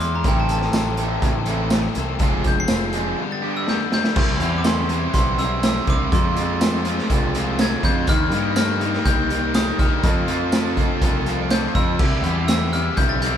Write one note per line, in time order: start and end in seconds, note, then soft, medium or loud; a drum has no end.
0.00 0.22 E2 medium
0.00 0.23 E3 medium
0.00 0.25 G#3 medium
0.00 0.24 B3 medium
0.00 0.23 E4 medium
0.00 0.13 C6 medium
0.00 closed hi-hat medium
0.15 0.26 A#5 medium
0.24 0.68 A1 loud
0.24 0.72 A2 medium
0.24 0.73 E3 medium
0.24 0.74 A3 loud
0.24 0.74 C4 medium
0.24 0.75 E4 medium
0.24 0.57 A4 medium
0.24 kick loud
0.24 closed hi-hat medium
0.28 0.38 G5 medium
0.40 0.50 A5 medium
0.49 1.94 A5 medium
0.49 closed hi-hat medium
0.61 snare soft
0.73 1.17 A1 medium
0.73 1.47 A2 medium
0.73 1.21 E3 medium
0.73 1.23 A3 medium
0.73 1.24 C4 loud
0.73 1.24 E4 loud
0.73 snare loud
0.73 closed hi-hat medium
0.73 tambourine loud
0.97 1.31 E3 medium
0.97 1.31 C4 medium
0.97 1.31 E4 medium
0.97 1.30 A4 medium
0.97 closed hi-hat medium
1.22 1.87 A1 medium
1.22 1.71 E3 medium
1.22 1.50 A3 medium
1.22 1.48 C4 medium
1.22 1.46 E4 medium
1.22 kick medium
1.22 closed hi-hat medium
1.46 1.80 E3 medium
1.46 1.73 C4 medium
1.46 1.74 E4 medium
1.46 1.79 A4 medium
1.46 closed hi-hat medium
1.51 1.72 A3 medium
1.70 2.19 E3 medium
1.70 1.98 A3 medium
1.70 1.97 C4 medium
1.70 snare loud
1.70 closed hi-hat medium
1.70 tambourine loud
1.75 1.95 E4 medium
1.95 2.18 C2 medium
1.95 2.20 C4 medium
1.95 2.19 E4 medium
1.95 closed hi-hat medium
1.99 2.21 A3 medium
2.19 2.64 F1 medium
2.19 2.67 F3 medium
2.19 2.68 G#3 medium
2.19 2.69 C4 loud
2.19 2.70 F4 loud
2.19 2.53 G#4 medium
2.19 kick loud
2.19 closed hi-hat medium
2.44 2.58 G6 medium
2.44 kick medium
2.44 closed hi-hat medium
2.60 3.30 C7 loud
2.68 3.13 F1 medium
2.68 3.17 F3 medium
2.68 3.17 G#3 medium
2.68 3.17 C4 loud
2.68 3.18 F4 loud
2.68 snare loud
2.68 closed hi-hat loud
2.68 tambourine loud
2.93 3.19 F3 medium
2.93 3.19 G#3 medium
2.93 3.19 C4 medium
2.93 3.18 G#4 medium
2.93 closed hi-hat medium
3.17 3.67 G2 medium
3.17 3.65 D3 loud
3.17 3.43 G3 loud
3.17 3.42 B3 loud
3.17 3.40 D4 loud
3.32 3.55 A6 medium
3.42 3.66 G3 medium
3.42 3.67 B3 medium
3.42 3.68 D4 medium
3.42 3.75 G4 medium
3.57 3.68 E6 medium
3.66 4.15 D3 medium
3.66 3.93 G3 medium
3.66 3.91 B3 medium
3.66 3.90 D4 medium
3.66 3.92 G6 medium
3.66 snare medium
3.91 4.15 G3 medium
3.91 4.15 B3 medium
3.91 4.15 D4 medium
3.91 4.17 G6 loud
3.91 snare medium
4.04 snare medium
4.15 4.41 C2 loud
4.15 4.39 C3 medium
4.15 4.40 E3 loud
4.15 4.41 G3 medium
4.15 4.42 C4 loud
4.15 4.41 E4 loud
4.15 kick loud
4.15 crash loud
4.40 5.06 E2 medium
4.40 4.63 C3 medium
4.40 4.64 E3 medium
4.40 4.66 G3 medium
4.40 4.66 C4 medium
4.40 4.65 E4 loud
4.40 closed hi-hat medium
4.58 4.65 D6 medium
4.64 4.89 C3 medium
4.64 4.90 E3 medium
4.64 4.91 G3 medium
4.64 4.91 C4 medium
4.64 4.91 E4 medium
4.64 5.13 C6 medium
4.64 snare loud
4.64 closed hi-hat loud
4.64 tambourine loud
4.89 5.13 C3 medium
4.89 5.14 E3 medium
4.89 5.15 G3 medium
4.89 5.15 C4 medium
4.89 5.16 E4 medium
4.89 closed hi-hat medium
5.14 5.79 B1 medium
5.14 5.37 C3 loud
5.14 5.38 E3 medium
5.14 5.39 G3 medium
5.14 5.39 C4 loud
5.14 5.39 E4 loud
5.14 5.40 C6 loud
5.14 kick medium
5.14 closed hi-hat medium
5.38 5.62 C3 medium
5.38 5.62 E3 medium
5.38 5.64 G3 medium
5.38 5.63 C4 loud
5.38 5.64 E4 loud
5.38 5.64 E6 loud
5.38 closed hi-hat medium
5.63 5.86 C3 medium
5.63 5.87 E3 medium
5.63 5.88 G3 medium
5.63 5.88 C4 loud
5.63 5.88 E4 medium
5.63 5.89 E6 loud
5.63 snare loud
5.63 closed hi-hat loud
5.63 tambourine loud
5.87 6.09 C2 medium
5.87 6.11 C3 medium
5.87 6.11 E3 medium
5.87 6.12 G3 loud
5.87 6.11 C4 medium
5.87 6.12 E4 medium
5.87 6.12 D6 medium
5.87 kick medium
5.87 closed hi-hat medium
6.12 6.99 F2 loud
6.12 6.36 F3 medium
6.12 6.35 G#3 medium
6.12 6.36 C4 loud
6.12 6.37 F4 loud
6.12 7.07 C6 medium
6.12 kick loud
6.12 closed hi-hat loud
6.36 6.60 F3 medium
6.36 6.60 G#3 medium
6.36 6.60 C4 medium
6.36 6.62 F4 medium
6.36 closed hi-hat medium
6.61 6.86 F3 medium
6.61 6.85 G#3 medium
6.61 6.86 C4 medium
6.61 6.87 F4 loud
6.61 snare loud
6.61 closed hi-hat loud
6.61 tambourine loud
6.85 7.09 F3 medium
6.85 7.09 G#3 medium
6.85 7.10 C4 medium
6.85 7.11 F4 medium
6.85 closed hi-hat medium
6.98 snare soft
7.10 7.75 C2 loud
7.10 7.35 F3 loud
7.10 7.34 G#3 medium
7.10 7.35 C4 loud
7.10 7.36 F4 loud
7.10 kick medium
7.10 closed hi-hat loud
7.35 7.58 F3 medium
7.35 7.58 G#3 medium
7.35 7.59 C4 medium
7.35 7.60 F4 medium
7.35 closed hi-hat medium
7.59 7.83 F3 medium
7.59 7.82 G#3 medium
7.59 7.83 C4 loud
7.59 7.84 F4 medium
7.59 7.83 G#6 loud
7.59 snare loud
7.59 closed hi-hat loud
7.59 tambourine loud
7.83 8.05 F2 loud
7.83 8.07 F3 medium
7.83 8.07 G#3 medium
7.83 8.07 C4 medium
7.83 8.09 F4 loud
7.83 8.07 G6 loud
7.83 kick medium
7.83 closed hi-hat medium
8.07 8.33 D#2 loud
8.07 8.31 D#3 medium
8.07 8.33 G3 medium
8.07 8.32 A#3 medium
8.07 8.32 D#4 loud
8.07 8.33 G4 loud
8.07 8.33 A#4 loud
8.07 8.54 F6 loud
8.07 kick loud
8.07 closed hi-hat loud
8.32 8.98 G2 loud
8.32 8.55 D#3 medium
8.32 8.57 G3 medium
8.32 8.56 A#3 medium
8.32 8.56 D#4 medium
8.32 8.58 G4 medium
8.32 8.57 A#4 medium
8.32 closed hi-hat medium
8.56 8.80 D#3 medium
8.56 8.81 G3 medium
8.56 8.81 A#3 medium
8.56 8.81 D#4 medium
8.56 8.82 G4 loud
8.56 8.82 A#4 loud
8.56 9.07 F6 medium
8.56 snare loud
8.56 closed hi-hat loud
8.56 tambourine loud
8.81 9.04 D#3 medium
8.81 9.06 G3 medium
8.81 9.05 A#3 medium
8.81 9.05 D#4 medium
8.81 9.07 G4 medium
8.81 9.07 A#4 medium
8.81 closed hi-hat medium
8.93 snare soft
9.05 9.71 C2 medium
9.05 9.29 D#3 medium
9.05 9.30 G3 loud
9.05 9.30 A#3 loud
9.05 9.30 D#4 loud
9.05 9.31 G4 loud
9.05 9.31 A#4 loud
9.05 9.51 G6 loud
9.05 kick medium
9.05 closed hi-hat loud
9.30 9.53 D#3 medium
9.30 9.55 G3 medium
9.30 9.54 A#3 loud
9.30 9.54 D#4 loud
9.30 9.56 G4 loud
9.30 9.56 A#4 loud
9.30 closed hi-hat medium
9.54 9.78 D#3 medium
9.54 9.79 G3 medium
9.54 9.79 A#3 medium
9.54 9.79 D#4 medium
9.54 9.81 G4 loud
9.54 9.80 A#4 loud
9.54 9.78 D#6 medium
9.54 snare loud
9.54 closed hi-hat loud
9.54 tambourine loud
9.79 10.01 A#1 medium
9.79 10.02 D#3 medium
9.79 10.04 G3 medium
9.79 10.03 A#3 medium
9.79 10.03 D#4 medium
9.79 10.04 G4 medium
9.79 10.03 A#4 loud
9.79 10.49 F6 medium
9.79 kick medium
9.79 snare soft
9.79 closed hi-hat medium
10.03 10.90 F2 medium
10.03 10.26 F3 medium
10.03 10.27 A3 medium
10.03 10.28 C4 medium
10.03 10.28 F4 loud
10.03 10.30 A4 loud
10.03 kick loud
10.03 closed hi-hat loud
10.27 10.51 F3 medium
10.27 10.51 A3 medium
10.27 10.53 C4 medium
10.27 10.52 F4 medium
10.27 10.54 A4 medium
10.27 closed hi-hat medium
10.52 10.75 F3 medium
10.52 10.75 A3 medium
10.52 10.77 C4 medium
10.52 10.77 F4 loud
10.52 10.78 A4 medium
10.52 snare loud
10.52 closed hi-hat loud
10.52 tambourine loud
10.76 11.00 F3 medium
10.76 11.01 A3 medium
10.76 11.03 C4 medium
10.76 11.02 F4 medium
10.76 11.03 A4 medium
10.76 kick medium
10.76 closed hi-hat medium
11.02 11.67 C2 medium
11.02 11.25 F3 medium
11.02 11.26 A3 loud
11.02 11.27 C4 medium
11.02 11.27 F4 loud
11.02 11.27 A4 loud
11.02 kick medium
11.02 closed hi-hat loud
11.26 11.49 F3 medium
11.26 11.50 A3 medium
11.26 11.51 C4 medium
11.26 11.51 F4 medium
11.26 11.51 A4 medium
11.26 closed hi-hat medium
11.50 11.74 F3 medium
11.50 11.74 A3 medium
11.50 11.76 C4 medium
11.50 11.76 F4 medium
11.50 11.75 A4 medium
11.50 11.76 G6 medium
11.50 snare loud
11.50 closed hi-hat loud
11.50 tambourine loud
11.75 11.97 F2 medium
11.75 11.98 F3 medium
11.75 11.98 A3 medium
11.75 12.02 C4 medium
11.75 11.99 F4 loud
11.75 11.99 A4 medium
11.75 12.47 E6 medium
11.75 kick medium
11.75 closed hi-hat medium
11.99 12.24 C2 loud
11.99 12.24 C3 medium
11.99 12.24 E3 medium
11.99 12.26 G3 medium
11.99 12.26 C4 loud
11.99 12.25 E4 loud
11.99 12.25 G4 loud
11.99 kick loud
11.99 crash loud
12.24 12.89 E2 loud
12.24 12.47 C3 medium
12.24 12.48 E3 medium
12.24 12.49 G3 medium
12.24 12.50 C4 medium
12.24 12.49 E4 medium
12.24 12.50 G4 medium
12.24 closed hi-hat medium
12.48 12.72 C3 medium
12.48 12.73 E3 medium
12.48 12.74 G3 medium
12.48 12.75 C4 medium
12.48 12.74 E4 medium
12.48 12.73 G4 medium
12.48 12.71 E6 medium
12.48 snare loud
12.48 closed hi-hat loud
12.48 tambourine loud
12.73 12.97 C3 medium
12.73 12.97 E3 medium
12.73 12.99 G3 medium
12.73 12.98 C4 loud
12.73 12.99 E4 medium
12.73 12.98 G4 loud
12.73 12.98 F6 medium
12.73 closed hi-hat medium
12.97 13.37 B1 medium
12.97 13.21 C3 medium
12.97 13.22 E3 loud
12.97 13.23 G3 medium
12.97 13.23 C4 loud
12.97 13.23 E4 loud
12.97 13.23 G4 loud
12.97 13.10 G6 loud
12.97 kick medium
12.97 closed hi-hat medium
13.09 13.22 A6 medium
13.22 13.37 C3 medium
13.22 13.37 E3 medium
13.22 13.37 G3 medium
13.22 13.37 C4 loud
13.22 13.37 E4 loud
13.22 13.37 G4 loud
13.22 13.37 G6 medium
13.22 closed hi-hat medium